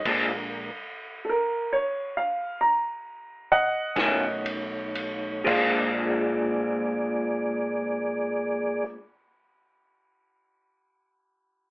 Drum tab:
CC |x-----------|x-----------|
RD |x--------xxx|------------|
SD |---------o--|------------|
BD |o--------o--|o-----------|